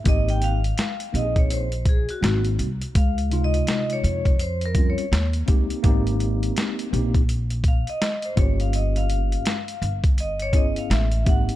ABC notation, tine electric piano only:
X:1
M:4/4
L:1/8
Q:"Swing 16ths" 1/4=83
K:Ab
V:1 name="Tine electric piano"
[B,CEG] z2 [B,CEGA] z2 [B,CE_G] z | z [C,A,EF]3 z [G,CDF] z [B,CEG] | [B,_C=CEG]3 [B,CEG] z3 [B,DFG]- | [B,DFG]2 z3 [_CD_FA] z [B,=CEG] |]